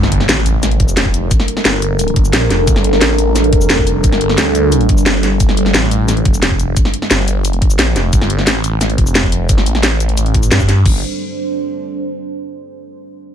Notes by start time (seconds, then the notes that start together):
Already playing: G1 G3 D4 A4 A#4, impact
0.03 snare
0.12 closed hi-hat
0.20 snare
0.29 A1, snare, closed hi-hat, shaker
0.46 closed hi-hat, shaker
0.63 snare, closed hi-hat, shaker
0.71 closed hi-hat
0.80 F1, kick, closed hi-hat
0.88 shaker
0.97 snare, closed hi-hat, shaker
1.05 kick
1.14 closed hi-hat, shaker
1.31 kick, closed hi-hat, shaker
1.40 snare
1.48 closed hi-hat
1.57 snare
1.65 G1, snare, closed hi-hat, shaker
1.82 closed hi-hat, shaker
1.99 closed hi-hat, shaker
2.08 closed hi-hat
2.16 G1, kick, closed hi-hat
2.25 shaker
2.33 A#1, snare, closed hi-hat, shaker
2.50 F1, snare, closed hi-hat, shaker
2.67 G1, kick, closed hi-hat, shaker
2.76 snare
2.84 closed hi-hat
2.93 snare
3.01 A1, snare, closed hi-hat, shaker
3.18 closed hi-hat, shaker
3.36 snare, closed hi-hat, shaker
3.44 closed hi-hat
3.53 F1, kick, closed hi-hat
3.61 shaker
3.70 snare, closed hi-hat, shaker
3.78 kick
3.87 closed hi-hat, shaker
4.04 G1, kick, closed hi-hat, shaker
4.12 snare
4.21 closed hi-hat
4.29 snare
4.38 D2, snare, closed hi-hat, shaker
4.55 closed hi-hat, shaker
4.72 closed hi-hat, shaker
4.81 closed hi-hat
4.89 G1, kick, closed hi-hat
4.98 shaker
5.06 snare, closed hi-hat, shaker
5.23 snare, closed hi-hat, shaker
5.40 G1 C5, kick, closed hi-hat, shaker
5.49 snare
5.57 closed hi-hat
5.66 snare
5.74 A1, snare, closed hi-hat, shaker
5.91 closed hi-hat, shaker
6.08 snare, closed hi-hat, shaker
6.17 closed hi-hat
6.25 F1, kick, closed hi-hat
6.34 shaker
6.43 snare, closed hi-hat, shaker
6.51 kick
6.60 closed hi-hat, shaker
6.76 kick, closed hi-hat, shaker
6.85 snare
6.94 closed hi-hat
7.02 snare
7.11 G1, snare, closed hi-hat, shaker
7.28 closed hi-hat, shaker
7.45 closed hi-hat, shaker
7.53 closed hi-hat
7.62 G1, kick, closed hi-hat
7.70 shaker
7.79 A#1, snare, closed hi-hat, shaker
7.96 F1, snare, closed hi-hat, shaker
8.13 G1, kick, closed hi-hat, shaker
8.21 snare
8.30 closed hi-hat
8.38 snare
8.47 A1, snare, closed hi-hat, shaker
8.64 closed hi-hat, shaker
8.81 snare, closed hi-hat, shaker
8.90 closed hi-hat
8.98 F1, kick, closed hi-hat
9.07 shaker
9.15 snare, closed hi-hat, shaker
9.24 kick
9.32 closed hi-hat, shaker
9.49 G1, kick, closed hi-hat, shaker
9.58 snare
9.66 A1, closed hi-hat, shaker
9.75 snare
9.83 snare, closed hi-hat, shaker
10.00 closed hi-hat, shaker
10.09 closed hi-hat
10.17 A1, closed hi-hat, shaker
10.26 closed hi-hat
10.34 kick, closed hi-hat
10.43 closed hi-hat, shaker
10.51 G2, snare, closed hi-hat, shaker
10.60 kick, shaker
10.69 snare, closed hi-hat, shaker
10.86 G1, kick, crash